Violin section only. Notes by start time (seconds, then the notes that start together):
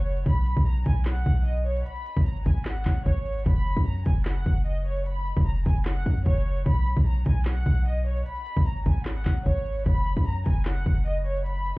Already playing: C#5
0.26 B5
0.66 A#5
0.86 G#5
1.06 F#5
1.46 D#5
1.66 C#5
1.86 B5
2.26 A#5
2.46 G#5
2.66 F#5
3.06 C#5
3.47 B5
3.86 A#5
4.06 G#5
4.26 F#5
4.66 D#5
4.86 C#5
5.06 B5
5.46 A#5
5.66 G#5
5.86 F#5
6.26 C#5
6.66 B5
7.06 A#5
7.26 G#5
7.46 F#5
7.86 D#5
8.06 C#5
8.26 B5
8.66 A#5
8.86 G#5
9.06 F#5
9.46 C#5
9.87 B5
10.26 A#5
10.46 G#5
10.66 F#5
11.06 D#5
11.26 C#5
11.46 B5